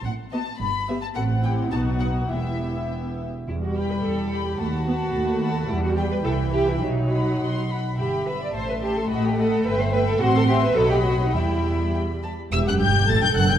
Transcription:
<<
  \new Staff \with { instrumentName = "Violin section" } { \time 2/4 \key e \minor \tempo 4 = 107 fis''8 a''8 b''8. a''16 | fis''8 g''8 a''8 fis''8 | e''4 r4 | r8 b''4 b''8 |
b''8 b''4 b''8 | r8 b''8 b''8 b''8 | r8 b''8 c'''8 b''8 | b''8 b''8 c'''8 c'''8 |
b''8 b''8 b''8 b''8 | c'''4 b''4 | b''4. r8 | e'''16 fis'''16 g'''8 a'''16 g'''16 fis'''16 g'''16 | }
  \new Staff \with { instrumentName = "Violin section" } { \time 2/4 \key e \minor << { r8 dis''8 r8 e''8 | fis''4 fis''4 | e''4. r8 | r8 b''4 b''8 |
a''8 a''4 a''8 | r8 g''8 g''8 g''8 | r8 b''4 b''8 | b''8 b''8 a''8 a''8 |
fis''8 fis''8 g''8 g''8 | fis''4 fis''4 | g''4 g''8 a''8 | e''16 fis''16 g''8 a''16 g''16 fis''16 g''16 | } \\ { r8 b'8 r8 b'8 | a'8 g'8 fis'4 | g'4. r8 | r8 g''4 g''8 |
fis''8 fis''4 fis''8 | r8 g''8 e''8 e''8 | r8 fis''4 fis''8 | e''8 e''8 e''8 e''8 |
dis''8 dis''8 e''8 e''8 | fis''8 e''8 dis''4 | e''4 r4 | r2 | } >> }
  \new Staff \with { instrumentName = "Cello section" } { \time 2/4 \key e \minor a,4 g,4 | a,4 b,4 | e,4. r8 | e'16 fis'16 g'16 b'16 a'8. g'16 |
fis'2 | e'16 fis'16 g'16 b'16 a'8 g'16 e'16 | dis'4. r8 | g'8 b'16 d''16 c''16 b'16 g'16 a'16 |
fis'16 g'16 a'8 b'16 c''16 b'16 a'16 | fis'16 a'16 g'16 b'16 a'16 g'16 fis'16 dis'16 | e'4 r4 | e,16 fis,16 g,8 a,16 g,16 fis,16 g,16 | }
  \new Staff \with { instrumentName = "Viola section" } { \time 2/4 \key e \minor << { r8 fis'8 r8 g'8 | fis'8 e'8 dis'4 | e'4. r8 | g2 |
a8 b8 a4 | g4 e4 | fis4. r8 | r4 a4~ |
a2 | c'4 fis4 | g4. r8 | g'4 a'4 | } \\ { r8 b8 r8 b8 | c'4 b4 | b4. r8 | r2 |
r2 | r2 | r2 | r2 |
r2 | r2 | r2 | r2 | } >> }
  \new Staff \with { instrumentName = "Double bass section" } { \clef bass \time 2/4 \key e \minor a,,4 g,,4 | a,,4 b,,4 | e,,4. r8 | e,4 e,4 |
dis,4 dis,4 | e,4 c,4 | b,,4 b,,4 | g,,4 a,,4 |
a,,4 g,,4 | a,,4 b,,4 | e,4. r8 | e,,16 r16 g,,8 a,,16 r16 fis,,16 r16 | }
>>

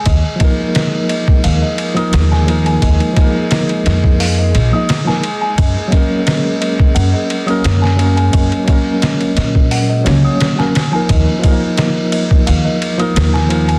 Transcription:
<<
  \new Staff \with { instrumentName = "Music box" } { \time 4/4 \key ees \minor \tempo 4 = 87 ees''16 r16 ees''16 r16 ees''8 ees''8 f''16 ees''16 r16 ees'''16 r16 aes''16 r16 aes''16 | ees''16 r16 ees''16 r16 ees''8 ees''8 f''16 ees''16 r16 ees'''16 r16 aes''16 r16 aes''16 | ees''16 r16 ees''16 r16 ees''8 ees''8 ges''16 ees''16 r16 ees'''16 r16 aes''16 r16 aes''16 | ees''16 r16 ees''16 r16 ees''8 ees''8 ges''16 ees''16 r16 ees'''16 r16 aes''16 r16 aes''16 |
ees''16 r16 ees''16 r16 ees''8 ees''8 f''16 ees''16 r16 ees'''16 r16 aes''16 r16 aes''16 | }
  \new Staff \with { instrumentName = "Synth drone" } { \time 4/4 \key ees \minor <aes aes'>1~ | <aes aes'>1~ | <aes aes'>1~ | <aes aes'>1~ |
<aes aes'>1 | }
  \new Staff \with { instrumentName = "Tine electric piano" } { \time 4/4 \key ees \minor r8 <f bes ees' bes'>2~ <f bes ees' bes'>16 <f bes ees' bes'>8. <f bes ees' bes'>8~ | <f bes ees' bes'>8 <f bes ees' bes'>2 r16 <f bes ees' ees''>16 r16 <f bes ees' bes'>16 r8 | r8 <ges bes des' bes'>2~ <ges bes des' bes'>16 <ges bes des' bes'>8. <ges bes des' bes'>8~ | <ges bes des' bes'>8 <ges bes des' bes'>2 <ges bes des' des''>8. <ges bes des' bes'>16 r16 <f bes ees' bes'>16~ |
<f bes ees' bes'>8 <f bes ees' bes'>2~ <f bes ees' bes'>16 <f bes ees' bes'>8. <f bes ees' bes'>8 | }
  \new Staff \with { instrumentName = "Upright bass" } { \clef bass \time 4/4 \key ees \minor ees,8 r4. ees,8 r8 ees,4 | ees,8 r4 f,4 bes,,8 r4 | ges,8 r4. ges,8 r8 ges,4 | ges,8 r4 bes,4 des,8 r4 |
ees,8 r4. ees,8 r8 ees,4 | }
  \new DrumStaff \with { instrumentName = "Drums" } \drummode { \time 4/4 <bd cymr>8 <bd cymr>8 <cymr sn>8 cymr16 bd16 cymr8 cymr16 cymr16 <cymr sn>16 sn16 cymr16 cymr16 | <bd cymr>16 cymr16 <bd cymr>8 <cymr sn>16 cymr16 <cymr sn>16 bd16 hho8 cymr8 <cymr sn>16 sn16 cymr8 | <bd cymr>8 <bd cymr>8 <cymr sn>8 cymr16 bd16 cymr8 cymr16 cymr16 <cymr sn>16 sn16 cymr16 cymr16 | <bd cymr>16 cymr16 <bd cymr>8 <cymr sn>16 cymr16 <cymr sn>16 bd16 hho8 <cymr sn>8 <cymr sn>16 sn16 <cymr sn>8 |
<bd cymr>8 <bd cymr>8 <cymr sn>8 cymr16 bd16 cymr8 cymr16 cymr16 <cymr sn>16 sn16 cymr16 cymr16 | }
>>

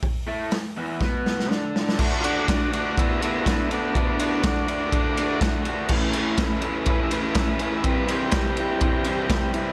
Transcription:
<<
  \new Staff \with { instrumentName = "Transistor combo organ" } { \time 4/4 \key d \lydian \tempo 4 = 123 r1 | r8 <d' f' fis'>8 <d' fis'>8 <d' fis'>8 <b e'>8 <b e'>8 <b e'>8 <b d'>8 | <b d'>8 <b d'>8 <cis' d'>2 r4 | r2 b'16 e''16 b'16 b'16 e''16 b'16 b'16 e''16 |
b'8 g'2. r8 | }
  \new Staff \with { instrumentName = "Overdriven electric guitar" } { \time 4/4 \key d \lydian r8 <a, a>8 r8 <e, e>8 <b, b>4 <d d'>4 | <d a d' fis'>8 <d a d' fis'>8 <d a d' fis'>8 <d a d' fis'>8 <d a d' fis'>8 <d a d' fis'>8 <d a d' fis'>8 <d a d' fis'>8 | <d a d' fis'>8 <d a d' fis'>8 <d a d' fis'>8 <d a d' fis'>8 <d a d' fis'>8 <d a d' fis'>8 <d a d' fis'>8 <d a d' fis'>8 | <a, e a cis' e'>8 <a, e a cis' e'>8 <a, e a cis' e'>8 <a, e a cis' e'>8 <a, e a cis' e'>8 <a, e a cis' e'>8 <a, e a cis' e'>8 <a, e a cis' e'>8 |
<c e g c' e'>8 <c e g c' e'>8 <c e g c' e'>8 <c e g c' e'>8 <c e g c' e'>8 <c e g c' e'>8 <c e g c' e'>8 <c e g c' e'>8 | }
  \new DrumStaff \with { instrumentName = "Drums" } \drummode { \time 4/4 <hho bd>4 <hho sn>4 <bd sn>8 sn16 sn16 sn8 sn16 sn16 | <cymc bd>8 cymr8 <bd cymr sn>8 cymr8 <bd cymr>8 cymr8 <bd cymr sn>8 cymr8 | <bd cymr>8 cymr8 <bd cymr sn>8 cymr8 <bd cymr>8 cymr8 <bd cymr sn>8 cymr8 | <cymc bd>8 cymr8 <bd cymr sn>8 cymr8 <bd cymr>8 cymr8 <bd cymr sn>8 cymr8 |
<bd cymr>8 cymr8 <bd cymr sn>8 cymr8 <bd cymr>8 cymr8 <bd cymr sn>8 cymr8 | }
>>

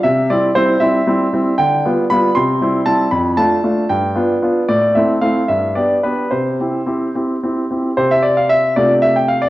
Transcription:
\new Staff \with { instrumentName = "Grand piano" } { \time 6/8 \key c \major \tempo 4. = 77 << { e''8 d''8 c''8 e''4. | g''4 b''8 c'''4 a''8 | b''8 a''4 g''4. | d''8 e''8 f''8 e''8 d''8 b'8 |
c''4. r4. | c''16 e''16 d''16 f''16 e''8 d''8 e''16 g''16 f''16 d''16 | } \\ { c8 <g c' e'>8 <g c' e'>8 <g c' e'>8 <g c' e'>8 <g c' e'>8 | d8 <g b f'>8 <g b f'>8 c8 <g c' e'>8 <g c' e'>8 | f,8 <a d' f'>8 <a d' f'>8 g,8 <b d' f'>8 <b d' f'>8 | a,8 <a c' e'>8 <a c' e'>8 g,8 <b d' g'>8 <b d' g'>8 |
c8 <c' e' g'>8 <c' e' g'>8 <c' e' g'>8 <c' e' g'>8 <c' e' g'>8 | <c c' g'>4. <c a d' f'>4. | } >> }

